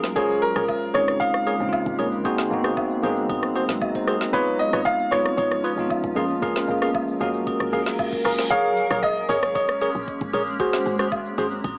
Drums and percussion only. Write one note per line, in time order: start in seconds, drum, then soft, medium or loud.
0.04 snare medium
0.04 shaker soft
0.16 kick loud
0.16 high agogo medium
0.16 shaker medium
0.30 shaker medium
0.42 shaker medium
0.56 cross-stick medium
0.56 high agogo medium
0.56 shaker medium
0.68 kick loud
0.68 low woodblock medium
0.68 shaker medium
0.82 shaker medium
0.94 cross-stick medium
0.94 high agogo medium
0.94 shaker loud
1.08 cross-stick loud
1.08 shaker medium
1.21 kick loud
1.21 high agogo medium
1.21 shaker medium
1.34 cross-stick medium
1.34 shaker soft
1.47 high agogo medium
1.47 shaker loud
1.60 shaker medium
1.73 kick medium
1.73 low woodblock medium
1.73 shaker medium
1.86 kick medium
1.86 shaker medium
1.99 high agogo medium
1.99 shaker medium
2.12 shaker soft
2.25 kick loud
2.25 high agogo medium
2.25 shaker medium
2.38 snare medium
2.38 shaker medium
2.51 shaker medium
2.64 cross-stick medium
2.64 high agogo medium
2.64 shaker medium
2.77 kick loud
2.77 low woodblock medium
2.77 shaker medium
2.91 shaker medium
3.03 high agogo medium
3.03 shaker loud
3.16 shaker medium
3.29 kick loud
3.29 high agogo medium
3.29 shaker medium
3.43 cross-stick medium
3.43 shaker soft
3.55 high agogo medium
3.55 shaker loud
3.69 snare medium
3.69 shaker medium
3.81 kick medium
3.81 low woodblock medium
3.81 shaker medium
3.95 kick medium
3.95 shaker medium
4.07 cross-stick medium
4.07 high agogo medium
4.07 shaker medium
4.21 snare medium
4.21 shaker soft
4.34 kick loud
4.34 high agogo medium
4.34 shaker medium
4.47 shaker medium
4.60 shaker medium
4.73 cross-stick medium
4.73 high agogo medium
4.73 shaker medium
4.86 kick loud
4.86 low woodblock medium
4.86 shaker medium
4.99 shaker medium
5.12 cross-stick loud
5.12 high agogo medium
5.12 shaker loud
5.25 cross-stick loud
5.25 shaker medium
5.38 kick loud
5.38 high agogo medium
5.38 shaker medium
5.51 cross-stick medium
5.51 shaker soft
5.64 high agogo medium
5.64 shaker loud
5.78 shaker medium
5.90 kick medium
5.90 low woodblock medium
5.90 shaker medium
6.04 kick medium
6.04 shaker medium
6.16 high agogo medium
6.16 shaker medium
6.30 shaker soft
6.42 kick loud
6.42 high agogo medium
6.42 shaker medium
6.56 snare medium
6.56 shaker medium
6.68 shaker medium
6.82 cross-stick medium
6.82 high agogo medium
6.82 shaker medium
6.94 kick loud
6.94 low woodblock medium
6.94 shaker medium
7.08 shaker medium
7.21 high agogo medium
7.21 shaker loud
7.34 shaker medium
7.47 kick loud
7.47 high agogo medium
7.47 shaker medium
7.60 cross-stick medium
7.60 shaker medium
7.73 high agogo medium
7.73 shaker loud
7.86 snare medium
7.86 shaker medium
7.99 kick medium
7.99 low woodblock medium
7.99 shaker medium
8.12 kick medium
8.12 shaker medium
8.25 cross-stick loud
8.25 high agogo medium
8.25 shaker medium
8.38 snare medium
8.38 shaker soft
8.51 kick loud
8.51 high agogo medium
8.51 shaker medium
8.65 shaker medium
8.77 open hi-hat medium
8.77 shaker medium
8.91 cross-stick medium
8.91 high agogo medium
8.91 shaker medium
9.03 kick loud
9.03 low woodblock medium
9.03 shaker medium
9.17 shaker medium
9.29 open hi-hat medium
9.29 high agogo medium
9.29 shaker loud
9.43 cross-stick loud
9.43 shaker medium
9.55 kick loud
9.55 high agogo medium
9.55 shaker medium
9.69 cross-stick medium
9.69 shaker soft
9.81 open hi-hat medium
9.81 high agogo medium
9.81 shaker loud
9.95 shaker medium
10.08 kick medium
10.08 shaker medium
10.21 kick medium
10.21 shaker medium
10.33 open hi-hat medium
10.33 high agogo medium
10.33 shaker medium
10.47 shaker soft
10.60 kick loud
10.60 high agogo medium
10.60 shaker medium
10.73 snare medium
10.73 shaker medium
10.86 open hi-hat medium
10.86 shaker medium
10.99 cross-stick medium
10.99 high agogo medium
10.99 shaker medium
11.12 kick loud
11.12 low woodblock medium
11.12 shaker medium
11.26 shaker medium
11.38 open hi-hat medium
11.38 high agogo medium
11.38 shaker loud
11.51 shaker medium
11.64 kick loud
11.64 high agogo medium
11.64 shaker medium